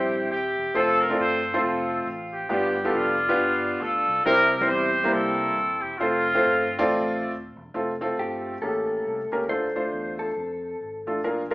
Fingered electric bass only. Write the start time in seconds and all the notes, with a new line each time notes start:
Already playing: A#1
0.30 D#1
0.57 E1
0.74 F1
1.19 G1
1.62 F1
2.06 A1
2.49 G1
2.93 F1
3.37 G1
3.81 D2
4.06 C2
4.24 C2
4.68 E2
5.12 C2
5.56 D#1
5.82 E1
5.99 F1
6.43 G1
6.87 A1
7.31 D#1
7.56 E1
7.74 F1
8.18 G1
8.61 A1
9.05 C2
9.31 C#2
9.48 D2
9.93 E2
10.37 F2
10.81 G#1
11.06 A1
11.24 A#1